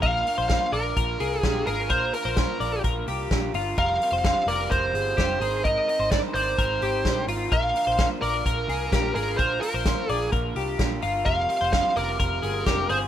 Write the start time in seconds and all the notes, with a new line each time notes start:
0.02 A#1 A#2 A#3 D4 F4 A#4 F5, kick, closed hi-hat
0.26 D4 F4 A#4, open hi-hat
0.38 A#1 C5
0.49 A#3 D4 F4 A#4 F5, kick, snare, closed hi-hat
0.72 A#1 D4 F4 A#4 D5, open hi-hat
0.97 A#1 A#2 A#3 D4 F4 A#4, kick, closed hi-hat
1.20 C2 D4 F4 G#4 A#4, open hi-hat
1.41 A#1 A#3 D4 F4 G4 G#4, kick, snare, closed hi-hat
1.45 A#4
1.67 G#1 D4 F4 G#4 A#4, open hi-hat
1.90 A#1 A#2 A#3 D4 F4 A#4 C5, kick, closed hi-hat
2.13 D4 F4 A#4, open hi-hat
2.25 A#1 C5
2.37 A#3 D4 F4 A#4, kick, snare, closed hi-hat
2.60 A#1 D4 F4 A#4 D5, open hi-hat
2.84 A#1 A#2 A#3 D4 F4 A#4, kick, closed hi-hat
3.07 C2 D4 F4 G4 A#4, open hi-hat
3.30 A#1 A#3 D4 F4 A#4, kick, snare, closed hi-hat
3.53 G1 D4 F4 A#4, open hi-hat
3.77 F1 F2 F3 G3 C4 F4 G4 A#4 F5, kick, closed hi-hat
4.01 G3 C4 F4 G4, open hi-hat
4.12 F1 C5
4.24 G3 C4 F4 G4 F5, kick, snare, closed hi-hat
4.47 F1 G3 C4 F4 G4 A#4 D5, open hi-hat
4.70 F1 F2 F3 G3 C4 F4 G4 A#4 C5, kick, closed hi-hat
4.94 G1 G3 C4 F4 G4 G#4, open hi-hat
5.17 F1 G3 C4 F4 G4, kick, snare, closed hi-hat
5.40 G#1 C4 D#4 G#4 A#4, open hi-hat
5.64 G#3 C4 D#4 A#4 D#5, kick, closed hi-hat
5.87 C4 D#4 A#4, open hi-hat
5.99 G#1 C5
6.11 G#3 C4 D#4 A#4 D5, kick, snare, closed hi-hat
6.34 G#1 C4 D#4 A#4 C5 D5, open hi-hat
6.57 G#1 G#3 C4 D#4 A#4, kick, closed hi-hat
6.81 G#1 C4 D#4 G4 A#4, open hi-hat
7.04 A#1 G#3 C4 D#4 A#4, kick, snare, closed hi-hat
7.27 G#1 C4 D#4 F4 A#4, open hi-hat
7.51 A#1 A#2 A#3 D4 F4 A#4 F5, kick, closed hi-hat
7.75 D4 F4 A#4, open hi-hat
7.87 A#1 C5
7.98 A#3 D4 F4 A#4 F5, kick, snare, closed hi-hat
8.21 A#1 D4 F4 A#4 D5, open hi-hat
8.45 A#1 A#2 A#3 D4 F4 A#4, kick, closed hi-hat
8.68 C2 D4 F4 G#4 A#4, open hi-hat
8.91 A#1 A#3 D4 F4 G4 A#4, kick, snare, closed hi-hat
9.14 G#1 D4 F4 G#4 A#4, open hi-hat
9.37 A#1 A#2 A#3 D4 F4 A#4 C5, kick, closed hi-hat
9.61 D4 F4 A#4, open hi-hat
9.74 A#1 C5
9.85 A#3 D4 F4 A#4, kick, snare, closed hi-hat
10.09 A#1 D4 F4 G#4 A#4 D5, open hi-hat
10.32 A#1 A#2 A#3 D4 F4 A#4, kick, closed hi-hat
10.55 C2 D4 F4 G4 A#4, open hi-hat
10.78 A#1 A#3 D4 F4 A#4, kick, snare, closed hi-hat
11.01 G1 D4 F4 A#4, open hi-hat
11.25 F1 F2 F3 G3 C4 F4 G4 A#4 F5, kick, closed hi-hat
11.48 G3 C4 F4 G4, open hi-hat
11.61 F1 C5
11.71 G3 C4 F4 G4 F5, kick, snare, closed hi-hat
11.95 F1 G3 C4 F4 G4 A#4 D5, open hi-hat
12.18 F1 F2 F3 G3 C4 F4 G4 A#4, kick, closed hi-hat
12.42 G1 G3 C4 F4 G4 G#4, open hi-hat
12.65 F1 G3 C4 F4 G4, kick, snare, closed hi-hat
12.89 G1 G3 C4 F4 G4 G#4 C5, open hi-hat